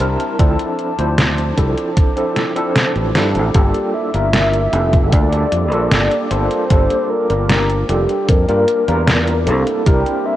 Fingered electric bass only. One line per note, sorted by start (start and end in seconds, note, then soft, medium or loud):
0.00 0.15 C2 loud
0.39 0.55 D2 medium
0.99 1.51 D2 medium
1.58 1.73 C2 loud
2.96 3.11 A1 medium
3.15 3.37 G2 medium
3.35 3.51 A1 medium
3.55 3.71 G1 medium
4.14 4.67 G1 medium
4.73 5.13 F1 loud
5.13 5.44 D2 medium
5.52 5.72 F2 medium
5.72 5.88 A#1 medium
5.92 6.07 G1 medium
6.31 6.47 G1 loud
6.71 6.86 G1 loud
7.30 7.82 G1 medium
7.89 8.05 F1 loud
8.29 8.44 F2 medium
8.49 8.64 G2 medium
8.88 9.48 E2 medium
9.47 9.63 C2 medium
9.86 10.02 C2 loud